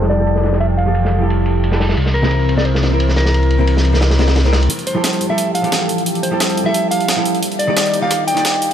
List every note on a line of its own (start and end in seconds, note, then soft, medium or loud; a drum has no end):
0.00 1.96 F1 medium
0.00 0.15 F3 medium
0.00 1.93 G3 medium
0.00 0.16 E4 medium
0.00 0.17 G4 medium
0.00 1.95 G4 medium
0.00 0.17 A4 medium
0.00 1.94 A4 medium
0.00 snare soft
0.10 0.60 D5 medium
0.10 snare soft
0.10 ride medium
0.16 0.84 F3 medium
0.16 0.84 E4 medium
0.16 0.85 G4 medium
0.21 0.86 A4 medium
0.27 ride medium
0.36 snare soft
0.43 snare soft
0.43 ride medium
0.53 snare soft
0.60 0.65 E5 loud
0.60 ride medium
0.70 ride soft
0.78 1.25 F5 medium
0.78 ride medium
0.86 1.19 E3 medium
0.86 1.17 F3 medium
0.86 1.19 G4 medium
0.86 1.19 A4 medium
0.95 ride medium
1.05 snare soft
1.18 1.69 F3 medium
1.18 1.70 E4 medium
1.18 1.70 G4 medium
1.24 1.71 A4 medium
1.30 ride medium
1.46 ride medium
1.64 ride medium
1.71 1.96 F3 medium
1.71 1.96 E4 medium
1.71 1.96 G4 medium
1.71 1.97 A4 medium
1.71 snare soft
1.80 snare medium
1.80 open hi-hat medium
1.89 snare soft
1.97 4.68 C2 medium
1.97 4.67 E3 medium
1.97 4.67 C4 medium
1.97 4.67 A#4 medium
1.97 ride medium
2.06 snare soft
2.14 2.54 A#4 medium
2.14 ride medium
2.22 2.55 C3 medium
2.22 2.55 C4 medium
2.22 2.55 E4 medium
2.22 2.56 A#4 medium
2.22 snare soft
2.31 ride medium
2.49 ride medium
2.56 2.88 C3 medium
2.56 2.89 C4 medium
2.56 2.90 E4 medium
2.56 2.90 A#4 medium
2.56 2.65 D5 loud
2.56 snare soft
2.65 3.16 C5 loud
2.65 ride medium
2.75 snare soft
2.83 snare soft
2.83 ride medium
2.89 3.56 C3 medium
2.89 3.57 C4 medium
2.89 3.58 E4 medium
2.94 3.59 A#4 medium
3.00 ride medium
3.09 snare soft
3.16 4.32 A#4 medium
3.16 snare soft
3.16 ride medium
3.26 snare soft
3.34 ride medium
3.43 ride soft
3.50 ride medium
3.58 3.91 C3 medium
3.58 3.91 C4 medium
3.58 3.92 E4 medium
3.58 3.92 A#4 medium
3.67 ride medium
3.77 snare soft
3.85 ride medium
3.92 4.16 C3 medium
3.92 4.17 C4 medium
3.92 4.17 E4 medium
3.92 4.18 A#4 loud
3.92 snare soft
4.01 snare medium
4.01 ride medium
4.11 snare medium
4.11 ride medium
4.17 4.42 C3 medium
4.17 4.42 C4 medium
4.17 4.43 E4 medium
4.17 4.43 A#4 loud
4.17 snare loud
4.17 ride medium
4.28 snare loud
4.28 ride medium
4.36 snare loud
4.36 ride medium
4.43 4.68 C3 medium
4.43 4.69 C4 medium
4.43 4.69 E4 medium
4.43 4.70 A#4 loud
4.43 snare soft
4.53 snare loud
4.53 ride medium
4.62 ride medium
4.70 5.12 F1 loud
4.70 8.73 G3 medium
4.70 7.40 G4 medium
4.70 7.40 A4 medium
4.70 closed hi-hat medium
4.79 closed hi-hat soft
4.87 5.30 C5 medium
4.87 closed hi-hat medium
4.95 5.27 F3 medium
4.95 5.28 E4 medium
4.95 5.28 G4 medium
4.95 5.28 A4 medium
5.04 snare loud
5.04 closed hi-hat medium
5.13 closed hi-hat soft
5.21 5.29 F2 medium
5.21 closed hi-hat medium
5.29 6.34 A1 loud
5.29 5.60 F3 medium
5.29 5.62 E4 medium
5.29 5.62 G4 medium
5.29 5.63 A4 medium
5.29 5.54 E5 medium
5.38 closed hi-hat medium
5.55 6.02 F5 medium
5.55 closed hi-hat medium
5.62 6.30 E3 medium
5.62 6.29 F3 medium
5.62 6.31 G4 medium
5.62 closed hi-hat soft
5.67 6.31 A4 loud
5.72 snare loud
5.72 closed hi-hat medium
5.89 closed hi-hat medium
5.98 closed hi-hat soft
6.06 closed hi-hat medium
6.15 closed hi-hat soft
6.23 6.68 C5 medium
6.23 closed hi-hat medium
6.31 6.56 F2 medium
6.31 6.63 F3 medium
6.31 6.64 E4 medium
6.31 6.64 G4 medium
6.31 6.65 A4 medium
6.40 snare loud
6.40 closed hi-hat medium
6.49 closed hi-hat soft
6.57 6.66 F2 medium
6.57 closed hi-hat medium
6.64 7.41 A1 loud
6.64 7.14 F3 medium
6.64 7.15 E4 medium
6.64 7.16 G4 medium
6.64 6.90 E5 loud
6.69 7.17 A4 medium
6.74 closed hi-hat medium
6.91 7.39 F5 loud
6.91 closed hi-hat medium
7.01 closed hi-hat soft
7.08 snare loud
7.08 closed hi-hat medium
7.16 7.41 F3 medium
7.16 7.41 E4 medium
7.16 7.42 G4 medium
7.16 7.42 A4 medium
7.25 closed hi-hat medium
7.35 closed hi-hat soft
7.42 7.84 D#1 loud
7.42 8.73 D#4 medium
7.42 8.73 D5 medium
7.42 closed hi-hat medium
7.52 closed hi-hat soft
7.59 8.02 D5 loud
7.59 closed hi-hat medium
7.67 8.00 D#3 medium
7.67 8.00 D#4 medium
7.67 8.01 G4 medium
7.67 8.01 D5 medium
7.77 snare loud
7.77 closed hi-hat medium
7.86 closed hi-hat soft
7.94 8.02 D#2 medium
7.94 closed hi-hat medium
8.02 8.73 G1 loud
8.02 8.33 D#3 medium
8.02 8.35 D#4 medium
8.02 8.35 G4 medium
8.02 8.35 D5 medium
8.02 8.26 F5 loud
8.11 snare soft
8.11 closed hi-hat medium
8.27 8.73 G5 loud
8.27 closed hi-hat medium
8.34 8.73 D#3 medium
8.34 8.73 D#4 medium
8.34 8.73 G4 medium
8.34 snare soft
8.34 closed hi-hat soft
8.39 8.73 D5 loud
8.45 snare loud
8.45 closed hi-hat medium
8.54 snare soft
8.62 closed hi-hat medium